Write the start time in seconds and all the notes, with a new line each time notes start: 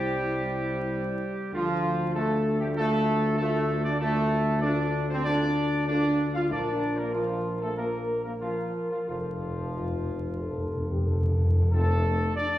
Already playing: C2 G3 E4 G4 C5
1.53 D2 F3 F4 A4
2.14 A3 F4 A4
2.60 G3 G4
2.76 A3 F4 A4
3.36 A3 F4 A4
3.84 D4 D5
3.99 A3 F4 A4
4.61 D4 F4 A4 D5
5.08 C5
5.12 C4
5.24 D4 F4 A4 D5
5.87 D4 F4 A4 D5
6.33 F4 F5
6.50 A#1 D4 F4 A#4 D5
6.98 A#3 A#4
7.13 F3 F4 A#4
7.61 A3 A4
7.76 A#3 F4 A#4
8.24 A#3 A#4
8.40 F3 F4 A#4
8.90 F3 F4
9.07 F1 F2 F3 F4 A4
9.15 F2
9.23 F2
9.31 F2
9.38 F2
9.47 F2
9.63 F2
9.71 F2 F4
9.79 F2
9.87 F2
9.95 F2
10.03 F2
10.10 F2
10.19 F2
10.26 F2
10.35 F2
10.40 F2 A4
10.50 F2
10.57 F2
10.66 F2
10.74 F2
10.81 F2
10.90 F2 G4
10.97 F2
11.05 F2 A4
11.12 F2
11.21 F2
11.29 F2
11.37 F2
11.45 F2
11.53 F2
11.61 F2
11.72 F1 F2 F3 A3 C4 A4
12.36 D4 D5